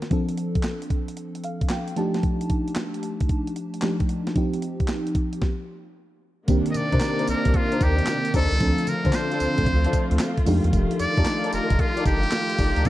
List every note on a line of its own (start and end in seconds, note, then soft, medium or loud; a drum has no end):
0.00 0.13 A#4 medium
0.00 snare medium
0.00 closed hi-hat soft
0.11 1.93 F3 medium
0.11 1.93 C4 medium
0.11 1.94 D4 medium
0.11 1.94 A4 medium
0.11 kick loud
0.11 closed hi-hat medium
0.29 closed hi-hat medium
0.38 closed hi-hat medium
0.55 kick loud
0.55 closed hi-hat medium
0.63 snare loud
0.63 clap medium
0.63 closed hi-hat medium
0.82 closed hi-hat soft
0.90 kick medium
0.90 closed hi-hat medium
1.08 closed hi-hat medium
1.17 closed hi-hat medium
1.35 closed hi-hat medium
1.44 1.69 F5 medium
1.44 closed hi-hat medium
1.61 kick medium
1.61 closed hi-hat soft
1.69 1.95 G5 medium
1.69 snare loud
1.69 clap medium
1.69 closed hi-hat medium
1.88 closed hi-hat soft
1.96 3.79 F3 medium
1.96 3.79 A3 medium
1.96 3.79 D4 medium
1.96 3.80 D#4 medium
1.96 3.80 G4 medium
1.96 2.22 A5 medium
1.96 closed hi-hat medium
2.14 snare medium
2.14 closed hi-hat soft
2.23 kick medium
2.23 closed hi-hat medium
2.41 closed hi-hat medium
2.50 kick medium
2.50 closed hi-hat medium
2.68 closed hi-hat soft
2.75 snare loud
2.75 clap medium
2.75 closed hi-hat medium
2.94 closed hi-hat medium
3.03 closed hi-hat medium
3.21 kick loud
3.21 closed hi-hat medium
3.29 kick medium
3.29 closed hi-hat medium
3.47 closed hi-hat medium
3.56 closed hi-hat medium
3.74 closed hi-hat soft
3.82 4.34 F3 medium
3.82 4.36 A3 medium
3.82 4.36 D4 medium
3.82 4.36 D#4 medium
3.82 4.36 G4 medium
3.82 snare loud
3.82 clap medium
3.82 closed hi-hat medium
4.00 kick medium
4.00 closed hi-hat medium
4.09 closed hi-hat medium
4.27 snare medium
4.27 closed hi-hat soft
4.35 5.40 F3 medium
4.35 5.40 C4 medium
4.35 5.40 D#4 medium
4.35 5.41 G4 medium
4.35 kick loud
4.35 closed hi-hat medium
4.54 closed hi-hat medium
4.62 closed hi-hat medium
4.80 kick loud
4.80 closed hi-hat medium
4.88 snare loud
4.88 clap medium
4.88 closed hi-hat medium
5.07 closed hi-hat medium
5.15 kick medium
5.15 closed hi-hat medium
5.33 closed hi-hat medium
5.42 kick loud
5.42 snare medium
6.48 6.62 C2 loud
6.48 8.58 C3 medium
6.48 8.56 D#3 medium
6.48 8.58 D#3 medium
6.48 8.58 A#3 medium
6.48 8.57 A#3 medium
6.48 8.57 C4 medium
6.48 8.58 D4 medium
6.48 8.57 D4 medium
6.48 8.57 G4 medium
6.48 kick loud
6.48 closed hi-hat medium
6.48 tambourine medium
6.66 closed hi-hat medium
6.71 6.82 C3 soft
6.71 6.78 D#5 medium
6.71 closed hi-hat medium
6.71 tambourine medium
6.77 7.29 D5 loud
6.92 6.99 C3 loud
6.92 7.07 D4 medium
6.92 7.07 D#4 medium
6.92 7.07 A#4 medium
6.92 7.07 C5 medium
6.92 kick loud
6.92 closed hi-hat medium
7.00 snare loud
7.00 clap medium
7.00 closed hi-hat medium
7.00 tambourine medium
7.18 7.33 D4 medium
7.18 7.33 D#4 medium
7.18 7.33 A#4 medium
7.18 7.33 C5 medium
7.18 closed hi-hat medium
7.28 7.35 C2 soft
7.28 7.58 A#4 loud
7.28 closed hi-hat medium
7.28 tambourine medium
7.45 7.52 C2 medium
7.45 kick loud
7.45 closed hi-hat medium
7.54 7.84 F4 loud
7.54 kick loud
7.54 closed hi-hat medium
7.72 7.86 D4 medium
7.72 7.86 D#4 medium
7.72 7.86 A#4 medium
7.72 7.87 C5 medium
7.72 closed hi-hat medium
7.81 8.01 D#2 loud
7.81 8.35 G4 loud
7.81 kick loud
7.81 closed hi-hat medium
7.81 tambourine medium
7.99 closed hi-hat medium
8.06 snare loud
8.06 clap medium
8.06 closed hi-hat medium
8.06 tambourine medium
8.25 closed hi-hat medium
8.34 8.48 D#2 loud
8.34 8.54 D4 medium
8.34 8.54 D#4 medium
8.34 8.90 A4 loud
8.34 8.55 A#4 medium
8.34 8.55 C5 medium
8.34 kick loud
8.34 open hi-hat medium
8.34 tambourine medium
8.52 8.59 C#2 medium
8.52 closed hi-hat medium
8.60 8.74 D2 loud
8.60 10.45 D3 medium
8.60 10.42 F3 medium
8.60 12.81 A3 medium
8.60 10.43 A3 medium
8.60 10.45 C4 medium
8.60 10.43 C4 medium
8.60 10.43 D4 medium
8.60 12.89 F4 medium
8.60 10.44 A4 medium
8.60 kick loud
8.60 closed hi-hat medium
8.60 tambourine medium
8.78 closed hi-hat medium
8.87 8.95 D3 medium
8.87 9.17 A#4 loud
8.87 closed hi-hat medium
8.87 tambourine medium
9.04 9.12 D3 medium
9.04 9.19 D4 medium
9.04 9.19 F4 medium
9.04 9.19 A4 medium
9.04 9.19 C5 medium
9.04 kick loud
9.04 closed hi-hat medium
9.13 10.21 C5 loud
9.13 snare loud
9.13 clap medium
9.13 closed hi-hat medium
9.13 tambourine loud
9.31 9.46 D4 medium
9.31 9.46 F4 medium
9.31 9.46 A4 medium
9.31 9.46 C5 medium
9.31 closed hi-hat medium
9.40 9.48 D2 soft
9.40 closed hi-hat medium
9.40 tambourine medium
9.58 9.65 D2 medium
9.58 kick loud
9.58 closed hi-hat medium
9.66 9.87 D2 loud
9.66 kick loud
9.66 closed hi-hat medium
9.84 9.99 D4 medium
9.84 9.99 F4 medium
9.84 9.99 A4 medium
9.84 9.99 C5 medium
9.84 closed hi-hat medium
9.93 kick loud
9.93 closed hi-hat medium
9.93 tambourine medium
10.11 10.18 D2 medium
10.11 closed hi-hat medium
10.19 snare loud
10.19 clap loud
10.19 closed hi-hat medium
10.19 tambourine medium
10.37 kick medium
10.37 closed hi-hat medium
10.46 10.60 F2 loud
10.46 12.83 D#3 medium
10.46 12.55 F3 medium
10.46 10.55 G#3 medium
10.46 12.55 D4 medium
10.46 12.55 D#4 medium
10.46 12.56 G4 medium
10.46 open hi-hat medium
10.46 tambourine medium
10.53 12.58 A3 medium
10.64 10.71 E2 medium
10.64 closed hi-hat medium
10.73 10.87 F1 loud
10.73 kick loud
10.73 closed hi-hat medium
10.73 tambourine medium
10.91 closed hi-hat medium
10.99 11.07 F2 soft
10.99 11.50 D5 loud
10.99 closed hi-hat medium
10.99 tambourine medium
11.17 11.24 F2 medium
11.17 11.31 D#4 medium
11.17 11.31 G4 medium
11.17 11.32 A4 medium
11.17 11.32 D5 medium
11.17 kick loud
11.17 closed hi-hat medium
11.25 snare loud
11.25 clap medium
11.25 closed hi-hat medium
11.25 tambourine medium
11.43 11.58 D#4 medium
11.43 11.58 G4 medium
11.43 11.58 A4 medium
11.43 11.58 D5 medium
11.43 closed hi-hat medium
11.53 11.60 F1 soft
11.53 11.82 A#4 loud
11.53 closed hi-hat medium
11.53 tambourine medium
11.70 11.77 F1 medium
11.70 kick loud
11.70 closed hi-hat medium
11.79 12.06 F4 loud
11.79 kick loud
11.79 closed hi-hat medium
11.96 12.11 D#4 medium
11.96 12.11 G4 medium
11.96 12.11 A4 medium
11.96 12.11 D5 medium
11.96 closed hi-hat medium
12.06 12.26 G1 medium
12.06 12.88 G4 loud
12.06 kick loud
12.06 closed hi-hat medium
12.06 tambourine medium
12.23 closed hi-hat medium
12.31 snare loud
12.31 clap medium
12.31 closed hi-hat medium
12.31 tambourine medium
12.50 closed hi-hat medium
12.58 12.73 G1 loud
12.58 12.79 D#4 medium
12.58 12.79 G4 medium
12.58 12.79 A4 medium
12.58 12.79 D5 medium
12.58 kick loud
12.58 open hi-hat medium
12.58 tambourine medium
12.76 12.84 D2 medium
12.76 closed hi-hat medium
12.85 12.89 D#2 loud
12.85 12.89 D#3 medium
12.85 12.89 F3 medium
12.85 12.89 A#3 medium
12.85 12.89 C4 medium
12.85 12.89 G4 medium
12.85 kick loud
12.85 closed hi-hat medium
12.85 tambourine medium